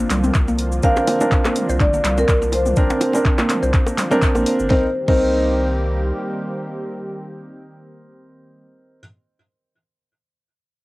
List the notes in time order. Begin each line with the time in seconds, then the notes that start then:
Already playing: D3 F3 A#3 C4 D4 F4 A#4 G5
0.10 C2 G3, clap, mid tom, open hi-hat, shaker
0.24 C4, mid tom, shaker
0.34 C2, kick, clap, shaker
0.48 A#3, shaker
0.59 open hi-hat, shaker
0.72 shaker
0.83 C2 C4 D4 A#4 F5, kick, shaker
0.96 C4, high bongo, shaker
1.07 A#3, open hi-hat, low bongo, shaker
1.21 C4 D4 A#4, low bongo, shaker
1.31 D4, kick, clap, shaker
1.45 A#3, clap, high bongo, low bongo, shaker
1.56 mid tom, open hi-hat, shaker
1.69 C2 C5, shaker
1.80 G1 D4 D5, kick, clap, mid tom, shaker
1.94 A#3, shaker
2.04 C2 G3, clap, open hi-hat, shaker
2.18 C4 A#4, low bongo, shaker
2.29 C2, kick, clap, shaker
2.42 A#3, shaker
2.52 C5, open hi-hat, low bongo, shaker
2.66 mid tom, shaker
2.76 C2 C4 D4 A#4, kick, shaker
2.90 C4, high bongo, shaker
3.01 A#3, open hi-hat, low bongo, shaker
3.13 C4 D4 A#4, low bongo, shaker
3.25 D4, kick, clap, shaker
3.38 A#3, clap, high bongo, low bongo, shaker
3.49 clap, mid tom, open hi-hat, shaker
3.63 C2 C5, shaker
3.73 D4, kick, clap, shaker
3.87 A#3, high bongo, shaker
3.98 G3, clap, mid tom, open hi-hat, shaker
4.11 C4 D4 A#4, mid tom, shaker
4.22 kick, clap, open hi-hat, shaker
4.35 A#1 A#3, high bongo, shaker
4.46 open hi-hat, shaker
4.59 G1, shaker
4.70 C2 D#3 G3 A#3 C4 D#4 G4 A#4 C5, kick, snare
5.08 C2 C4 D#4 A#4 C5, kick, crash